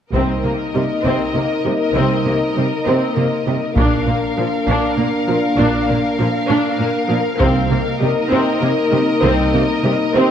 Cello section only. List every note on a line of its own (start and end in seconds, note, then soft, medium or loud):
0.14 0.22 C3 soft
0.44 0.52 C3 soft
0.75 0.83 C3 soft
1.05 1.13 C3 soft
1.35 1.43 C3 soft
1.65 1.73 C3 soft
1.95 2.03 C3 soft
2.25 2.33 C3 soft
2.57 2.65 C3 soft
2.87 2.95 C3 soft
3.17 3.25 C3 soft
3.47 3.55 C3 soft
3.76 3.84 A#2 soft
4.07 4.15 A#2 soft
4.37 4.45 A#2 soft
4.67 4.75 A#2 soft
4.98 5.06 A#2 soft
5.29 5.37 A#2 soft
5.59 5.67 A#2 soft
5.90 5.98 A#2 soft
6.19 6.27 A#2 soft
6.49 6.57 A#2 medium
6.79 6.87 A#2 soft
7.10 7.18 A#2 soft
7.40 7.48 C3 medium
7.71 7.79 C3 soft
8.02 8.10 C3 soft
8.31 8.39 C3 medium
8.62 8.70 C3 soft
8.92 9.00 C3 soft
9.23 9.31 C3 medium
9.54 9.62 C3 soft
9.84 9.92 C3 soft
10.15 10.23 C3 medium